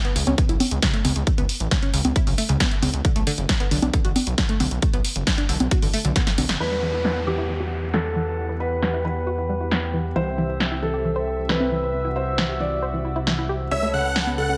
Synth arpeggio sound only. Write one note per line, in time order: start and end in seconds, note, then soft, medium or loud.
0.05 0.12 B3 medium
0.16 0.23 C#3 medium
0.27 0.32 C#4 medium
0.38 0.43 C#3 medium
0.49 0.54 E4 medium
0.82 0.89 C#3 medium
0.94 1.01 A3 medium
1.05 1.09 C#3 medium
1.38 1.43 B3 medium
1.71 1.78 C#3 medium
1.83 1.89 C#4 medium
1.94 2.01 C#3 medium
2.16 2.19 E4 medium
2.27 2.30 C#3 medium
2.38 2.43 A3 medium
2.49 2.56 C#3 medium
2.60 2.67 B3 medium
2.82 2.87 C#3 medium
3.05 3.09 D3 medium
3.16 3.20 A3 medium
3.27 3.32 D3 loud
3.60 3.67 B3 medium
3.71 3.78 D3 medium
3.82 3.87 D4 medium
3.94 3.98 D3 medium
4.05 4.09 F#4 medium
4.38 4.45 D3 medium
4.49 4.56 A3 medium
4.60 4.65 D3 medium
4.93 4.98 B3 medium
5.27 5.34 D3 medium
5.38 5.45 D4 medium
5.49 5.56 D3 medium
5.71 5.74 F#4 medium
5.82 5.85 D3 medium
5.94 5.98 A3 medium
6.05 6.12 D3 medium
6.16 6.23 B3 medium
6.38 6.43 D3 medium
6.60 6.65 E3 medium
6.71 6.76 G3 medium
6.82 6.87 E3 medium
7.16 7.23 B3 medium
7.27 7.34 E3 medium
7.38 7.43 E4 medium
7.49 7.54 E3 medium
7.60 7.65 F#4 medium
7.94 8.01 E3 medium
8.05 8.12 G3 medium
8.16 8.20 E3 medium
8.49 8.54 B3 medium
8.82 8.89 E3 medium
8.94 9.01 E4 medium
9.05 9.12 E3 medium
9.27 9.30 F#4 medium
9.38 9.41 E3 medium
9.49 9.54 G3 medium
9.60 9.67 E3 medium
9.71 9.78 B3 medium
9.94 9.98 E3 medium
10.16 10.20 E3 medium
10.27 10.32 C4 medium
10.38 10.43 E3 loud
10.71 10.78 E4 medium
10.82 10.89 E3 medium
10.94 10.98 G4 medium
11.05 11.09 E3 medium
11.16 11.20 C5 medium
11.49 11.56 E3 medium
11.60 11.67 C4 medium
11.71 11.76 E3 medium
12.05 12.09 E4 medium
12.38 12.45 E3 medium
12.49 12.56 G4 medium
12.60 12.67 E3 medium
12.82 12.85 C5 medium
12.94 12.96 E3 medium
13.05 13.09 E4 medium
13.16 13.21 E4 loud
13.27 13.34 E3 medium
13.38 13.45 E4 loud
13.49 13.56 G4 medium
13.71 13.76 C#3 medium
13.83 13.87 A3 medium
13.94 13.98 C#3 medium
14.27 14.34 B3 medium
14.38 14.45 C#3 medium
14.49 14.54 C#4 medium